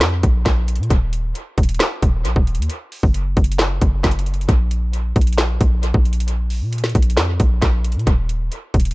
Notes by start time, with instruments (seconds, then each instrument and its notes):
0.01 808-style bass F2, snare, clap, closed hi-hat
0.23 808-style bass A#1, kick, closed hi-hat
0.46 808-style bass A#1, kick, snare, clap, closed hi-hat
0.68 closed hi-hat
0.76 808-style bass A#2, closed hi-hat
0.83 closed hi-hat
0.90 808-style bass D#1, kick, closed hi-hat
1.13 closed hi-hat
1.35 closed hi-hat
1.58 808-style bass D#1, kick, closed hi-hat
1.63 closed hi-hat
1.69 closed hi-hat
1.74 closed hi-hat
1.80 snare, clap, closed hi-hat
2.02 808-style bass D#1, kick, closed hi-hat
2.25 808-style bass A#1, closed hi-hat
2.36 808-style bass D#1, kick
2.47 closed hi-hat
2.55 808-style bass D#2, closed hi-hat
2.62 closed hi-hat
2.70 closed hi-hat
2.92 open hi-hat
3.03 808-style bass F#1, kick
3.14 closed hi-hat
3.37 808-style bass F#1, kick, closed hi-hat
3.44 closed hi-hat
3.52 closed hi-hat
3.59 snare, clap, closed hi-hat
3.81 808-style bass F#1, kick, closed hi-hat
4.04 808-style bass F#1, kick, snare, clap, closed hi-hat
4.11 closed hi-hat
4.19 closed hi-hat
4.26 closed hi-hat
4.34 closed hi-hat
4.41 closed hi-hat
4.49 808-style bass A#1, kick, closed hi-hat
4.71 closed hi-hat
4.93 closed hi-hat
5.16 808-style bass A#1, kick, closed hi-hat
5.21 closed hi-hat
5.27 closed hi-hat
5.33 closed hi-hat
5.38 snare, clap, closed hi-hat
5.61 808-style bass A#1, kick, closed hi-hat
5.83 closed hi-hat
5.94 808-style bass A#1, kick
6.05 closed hi-hat
6.13 closed hi-hat
6.20 closed hi-hat
6.28 closed hi-hat
6.50 open hi-hat
6.61 808-style bass A#2
6.73 closed hi-hat
6.78 closed hi-hat
6.84 snare, closed hi-hat
6.89 closed hi-hat
6.95 808-style bass A#1, kick, closed hi-hat
7.02 closed hi-hat
7.10 closed hi-hat
7.17 808-style bass F2, snare, clap, closed hi-hat
7.40 808-style bass A#1, kick, closed hi-hat
7.62 808-style bass A#1, kick, snare, clap, closed hi-hat
7.84 closed hi-hat
7.92 808-style bass A#2, closed hi-hat
7.99 closed hi-hat
8.07 808-style bass D#1, kick, closed hi-hat
8.29 closed hi-hat
8.52 closed hi-hat
8.74 808-style bass D#1, kick, closed hi-hat
8.80 closed hi-hat
8.85 closed hi-hat
8.91 closed hi-hat